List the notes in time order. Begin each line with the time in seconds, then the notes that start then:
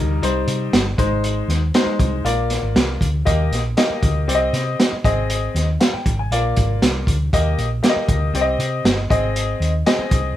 Already playing: D2 G3 D#4 A#4
0.22 C2 G3 D#4 C5, closed hi-hat
0.47 C3, closed hi-hat
0.73 G1, snare, closed hi-hat
0.98 G#1 G#3 D#4 C5, kick, closed hi-hat
1.24 closed hi-hat
1.48 D#2, snare, closed hi-hat
1.74 G#3 D#4 C5, snare, closed hi-hat
1.86 muted fingered electric bass stroke
1.99 C2, kick, closed hi-hat
2.25 A#1 A#3 F4 D5, closed hi-hat
2.50 snare, closed hi-hat
2.62 G#1
2.75 C2, snare, closed hi-hat
3.01 D2, kick, closed hi-hat
3.25 D#2 A#3 G4 D#5, kick, closed hi-hat
3.51 A#1, snare, closed hi-hat
3.77 A#3 G4 D#5, snare, closed hi-hat
3.90 muted fingered electric bass stroke
4.03 D2, kick, closed hi-hat
4.27 C2 C4 G4 D5, closed hi-hat
4.35 D#5
4.53 C3, snare, closed hi-hat
4.80 snare, closed hi-hat
4.92 muted fingered electric bass stroke
5.04 G#1 C4 G#4 D#5, kick, closed hi-hat
5.30 closed hi-hat
5.55 D#2, snare, closed hi-hat
5.80 F5, snare, closed hi-hat
5.93 G5, muted fingered electric bass stroke
6.06 G#1, kick, closed hi-hat
6.19 G#5
6.31 A#1 A#3 F4 D5, closed hi-hat
6.57 G#1, kick, closed hi-hat
6.82 C2, snare, closed hi-hat
7.07 D2, kick, closed hi-hat
7.33 D#2 A#3 G4 D#5, kick, closed hi-hat
7.58 A#1, closed hi-hat
7.83 A#3 G4 D5, snare, closed hi-hat
7.89 D#5
7.96 muted fingered electric bass stroke
8.08 D2, kick, closed hi-hat
8.33 C2 C4 G4 D5, closed hi-hat
8.41 D#5
8.58 C3, closed hi-hat
8.84 G1, snare, closed hi-hat
9.10 G#1 C4 G#4 D#5, kick, closed hi-hat
9.36 closed hi-hat
9.60 D#2, closed hi-hat
9.86 C4 G#4 D#5, snare, closed hi-hat
9.98 muted fingered electric bass stroke
10.11 C2, kick, closed hi-hat